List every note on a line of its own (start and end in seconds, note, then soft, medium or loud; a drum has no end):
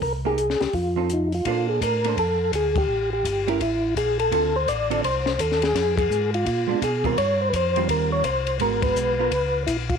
0.02 0.56 C2 medium
0.02 0.13 A#4 medium
0.02 kick soft
0.02 open hi-hat soft
0.25 0.37 A#3 medium
0.25 0.37 D#4 medium
0.25 0.38 G4 medium
0.25 0.62 G#4 loud
0.38 closed hi-hat soft
0.50 snare soft
0.60 0.67 C2 soft
0.60 0.74 G4 medium
0.60 snare soft
0.60 open hi-hat soft
0.73 1.42 F2 medium
0.73 1.29 F4 medium
0.73 kick soft
0.73 open hi-hat soft
0.96 1.08 F3 medium
0.96 1.09 C4 medium
0.96 1.09 D#4 medium
0.96 1.09 A4 medium
1.10 1.33 D#4 medium
1.10 closed hi-hat soft
1.32 1.45 F4 medium
1.32 open hi-hat soft
1.45 1.80 A#2 medium
1.45 2.00 A#3 soft
1.45 2.00 D4 medium
1.45 1.67 F4 medium
1.45 2.00 A4 medium
1.45 2.00 C5 medium
1.45 kick soft
1.45 ride medium
1.69 1.81 G#4 medium
1.81 2.16 A2 medium
1.81 2.16 A#4 medium
1.81 kick soft
1.81 hi-hat pedal medium
1.81 ride medium
2.04 2.16 A#3 soft
2.04 2.17 D4 medium
2.04 2.17 A4 medium
2.04 2.17 C5 medium
2.04 ride soft
2.17 2.52 F2 medium
2.17 2.52 A4 medium
2.17 kick soft
2.17 ride medium
2.53 2.88 D2 medium
2.53 2.77 G#4 medium
2.53 kick soft
2.53 hi-hat pedal medium
2.53 ride medium
2.76 3.10 G4 loud
2.76 kick medium
2.76 ride medium
2.88 3.23 A1 medium
3.13 3.49 G4 medium
3.25 3.59 G1 medium
3.25 kick soft
3.25 hi-hat pedal medium
3.25 ride medium
3.47 3.59 A3 medium
3.47 3.59 C#4 medium
3.47 3.60 E4 medium
3.47 3.59 G4 medium
3.47 3.60 A#4 medium
3.47 ride soft
3.60 3.95 A1 medium
3.60 3.94 E4 medium
3.60 kick soft
3.60 ride medium
3.96 4.31 A#1 medium
3.96 4.18 G#4 medium
3.96 kick soft
3.96 hi-hat pedal soft
3.96 ride medium
4.19 4.32 A4 medium
4.19 ride soft
4.32 4.67 D2 medium
4.32 4.52 D3 medium
4.32 4.52 C4 medium
4.32 4.53 F4 medium
4.32 4.53 A4 medium
4.32 4.56 A4 medium
4.32 kick soft
4.32 ride medium
4.56 4.69 C5 medium
4.67 5.02 A1 medium
4.67 5.01 D5 loud
4.67 kick soft
4.67 hi-hat pedal medium
4.67 ride medium
4.90 5.02 D3 medium
4.90 5.02 C4 medium
4.90 5.02 F4 medium
4.90 5.03 A4 medium
4.90 ride soft
5.03 5.38 C2 medium
5.03 5.41 C5 medium
5.03 kick soft
5.03 ride medium
5.26 snare soft
5.39 5.74 D#2 medium
5.39 5.63 A4 medium
5.39 kick soft
5.39 hi-hat pedal medium
5.39 ride medium
5.52 snare soft
5.62 5.96 G#4 loud
5.62 snare soft
5.62 ride soft
5.75 6.09 F2 medium
5.75 kick soft
5.75 snare soft
5.75 ride medium
5.97 6.30 G#4 loud
5.97 kick medium
5.97 ride medium
6.10 6.45 G#2 medium
6.10 hi-hat pedal medium
6.34 6.46 F4 medium
6.34 ride soft
6.46 6.67 A#2 medium
6.46 6.80 F4 medium
6.46 kick soft
6.46 ride medium
6.68 6.75 A#2 soft
6.68 6.80 G#3 medium
6.68 6.80 B3 medium
6.68 6.81 D4 medium
6.82 7.16 B2 medium
6.82 7.06 G#4 medium
6.82 kick soft
6.82 hi-hat pedal medium
6.82 ride medium
7.04 7.16 D#3 medium
7.04 7.16 G3 medium
7.04 7.17 C4 medium
7.04 7.17 F4 medium
7.04 7.17 A#4 medium
7.04 kick soft
7.04 ride soft
7.17 7.52 G2 medium
7.17 7.41 C#5 medium
7.17 kick soft
7.17 ride medium
7.42 7.49 C5 medium
7.50 7.88 F2 medium
7.50 7.54 B4 medium
7.50 kick soft
7.50 hi-hat pedal medium
7.50 ride medium
7.56 7.88 C5 medium
7.76 8.22 D#3 medium
7.76 8.22 G3 medium
7.76 8.22 C4 medium
7.76 8.23 F4 medium
7.76 ride soft
7.89 8.23 D#2 medium
7.89 8.11 A#4 medium
7.89 kick soft
7.89 ride medium
8.12 8.24 C#5 medium
8.24 8.59 C2 medium
8.24 8.58 C5 medium
8.24 kick soft
8.24 hi-hat pedal medium
8.24 ride medium
8.47 ride soft
8.59 8.94 G#1 medium
8.59 9.14 G#3 medium
8.59 9.14 B3 medium
8.59 9.15 F#4 medium
8.59 8.82 A#4 medium
8.59 kick soft
8.59 ride medium
8.82 9.63 B4 medium
8.82 kick medium
8.82 ride medium
8.94 9.30 B1 medium
8.94 hi-hat pedal medium
9.19 9.31 B3 medium
9.19 9.31 F4 medium
9.19 9.31 A#4 medium
9.31 9.66 C#2 medium
9.31 kick soft
9.31 ride medium
9.67 9.98 A#1 medium
9.67 9.77 E4 medium
9.67 kick soft
9.67 hi-hat pedal medium
9.67 ride medium
9.89 9.95 F4 medium
9.89 kick medium
9.89 ride soft